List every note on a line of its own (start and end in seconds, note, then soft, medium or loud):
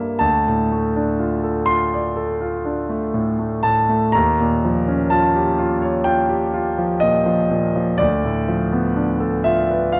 0.00 0.20 C2 soft
0.00 0.26 G2 soft
0.00 0.26 A#3 soft
0.00 0.26 E4 soft
0.00 0.25 A4 soft
0.00 0.25 A#4 soft
0.00 0.22 E5 medium
0.19 4.09 D2 soft
0.19 1.69 A5 medium
0.47 0.88 A2 soft
0.72 1.12 A3 soft
0.96 1.36 D4 soft
1.19 1.60 F4 soft
1.44 1.84 A4 soft
1.66 2.08 F4 soft
1.66 3.62 C6 medium
1.94 2.32 D5 soft
2.16 2.56 A4 soft
2.41 2.80 F4 soft
2.65 3.05 D4 soft
2.89 3.29 A3 soft
3.14 3.54 A2 soft
3.39 3.79 A3 soft
3.63 4.04 A2 soft
3.63 4.13 A5 medium
3.89 4.14 A3 soft
4.12 7.96 D#2 medium
4.12 5.10 A#5 medium
4.40 4.78 A#2 soft
4.65 5.02 F3 soft
4.88 5.26 C#4 soft
5.10 5.49 F4 soft
5.10 6.06 A5 medium
5.35 5.73 G4 soft
5.58 5.97 F4 medium
5.82 6.21 C#5 soft
6.04 6.44 F4 soft
6.04 7.02 G5 medium
6.29 6.68 G4 soft
6.54 6.93 F4 soft
6.78 7.17 F3 soft
7.00 7.42 A#2 soft
7.00 7.99 D#5 medium
7.26 7.65 F3 soft
7.50 7.90 A#2 soft
7.76 8.00 F3 soft
7.98 10.00 D2 medium
7.98 9.45 D5 medium
8.25 8.63 A2 soft
8.48 8.87 F3 soft
8.72 9.12 B3 soft
8.96 9.36 D4 soft
9.20 9.60 A4 soft
9.44 9.85 F4 soft
9.44 9.94 E5 medium
9.70 10.00 B4 soft
9.92 10.00 F4 soft
9.92 10.00 F5 medium